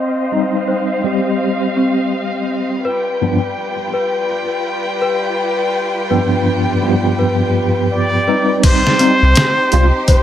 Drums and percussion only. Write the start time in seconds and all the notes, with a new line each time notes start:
8.63 kick, closed hi-hat, crash
8.87 snare
8.99 closed hi-hat
9.36 snare, closed hi-hat
9.72 closed hi-hat
10.08 kick, closed hi-hat